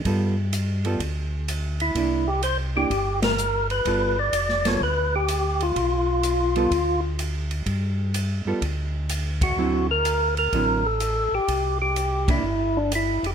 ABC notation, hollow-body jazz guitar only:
X:1
M:4/4
L:1/8
Q:"Swing" 1/4=126
K:Gmix
V:1 name="Hollow-body jazz guitar"
[G,B,FA] z2 [G,B,FA] z4 | [_B,DE] z2 [B,DE] z4 | [G,B,FA] z2 [G,B,FA] z4 | z3 [G,B,FA] z4 |
z3 [G,B,FA] z4 | [D,^F,CE] z3 [D,F,CE] z3 | z3 [_B,DE] z4 |]